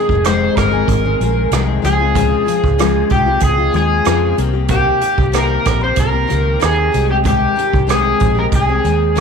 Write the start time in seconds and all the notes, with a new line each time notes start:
Already playing: D#3 G#3 C4 G#4
0.09 F1, kick
0.24 F2 C3 D#3 G#3 C4 G#4 C5, cross-stick, closed hi-hat
0.57 G1 A#4, kick, cross-stick, closed hi-hat
0.72 D#3 G#3 C4 G#4
0.88 G#1, kick, closed hi-hat
1.05 D#3 G#3 C4 G#4
1.21 A#1 D#3 G#3 C4 G#4, closed hi-hat
1.51 C2 F2 C3 D#3 G#3 C4 G#4, cross-stick, closed hi-hat
1.82 C#2 F3 G#3 C4 F4 G#4, closed hi-hat
2.00 G#3 C4 F4
2.15 C#3 F3 G#3 C4 F4, kick, closed hi-hat
2.46 F3 G#3 C4 F4, closed hi-hat
2.64 C#2, kick
2.78 C#3 F3 G#3 C4 F4, cross-stick, closed hi-hat
3.10 C2 G4, kick, closed hi-hat
3.26 G#3 C4 F4
3.40 C#2 G#4, kick, closed hi-hat
3.57 G#3 C4 F4
3.72 D#2 F3 G#3 C4 F4, closed hi-hat
3.77 G#4
4.05 F2 C#3 F3 G#3 C4 F4, cross-stick, closed hi-hat
4.37 C2 D#3 A#3 C4 G4, closed hi-hat
4.53 A#3 C4 G4
4.68 C3 D#3 A#3 C4 G4, kick, closed hi-hat
5.00 D#3 A#3 C4 G4, closed hi-hat
5.18 C2, kick
5.32 C3 D#3 A#3 C4 G4, cross-stick, closed hi-hat
5.37 A#4
5.65 A#1, kick, cross-stick, closed hi-hat
5.80 A#3 C4 G4 C5
5.96 C2 A#4, kick, closed hi-hat
6.11 A#3 C4 G4
6.27 C#2 D#3 A#3 C4 G4, closed hi-hat
6.60 D#2 C3 D#3 A#3 C4, cross-stick, closed hi-hat
6.65 G#4
6.92 C2 D#3 G#3 C4 G4, closed hi-hat
7.08 G#3 C4 G4
7.24 C3 D#3 G#3 C4 G4, kick, closed hi-hat
7.56 D#3 G#3 C4 G4, closed hi-hat
7.73 C2, kick
7.87 C3 D#3 G#3 C4, cross-stick, closed hi-hat
7.91 G#4
8.20 A#1, kick, closed hi-hat
8.35 G#3 C4 G4 A#4
8.52 C2 G#4, kick, closed hi-hat
8.68 G#3 C4 G4
8.84 D#2 D#3 G#3 C4, closed hi-hat
9.15 C3 D#3 G#3 C4, closed hi-hat